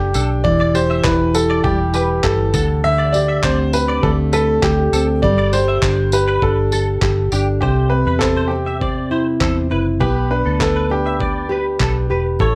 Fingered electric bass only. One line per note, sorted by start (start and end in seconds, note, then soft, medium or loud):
0.00 0.12 F#1 medium
0.15 0.42 B1 medium
0.45 1.00 E1 loud
1.04 1.60 E1 medium
1.64 2.20 E1 medium
2.24 2.51 G1 loud
2.54 3.39 D2 medium
3.44 3.99 D2 loud
4.03 4.59 D2 loud
4.63 4.90 D2 loud
4.92 5.20 D2 medium
5.23 5.79 G1 loud
5.82 6.38 G1 loud
6.42 6.98 G1 loud
7.02 7.29 G1 loud
7.32 7.60 G1 medium
7.61 8.03 C2 medium
8.06 9.37 E2 medium
9.41 9.69 E2 loud
9.71 9.99 F#1 medium
10.01 10.42 B1 medium
10.46 11.77 D2 medium
11.80 12.08 B1 medium
12.10 12.38 E1 medium
12.40 12.55 A1 loud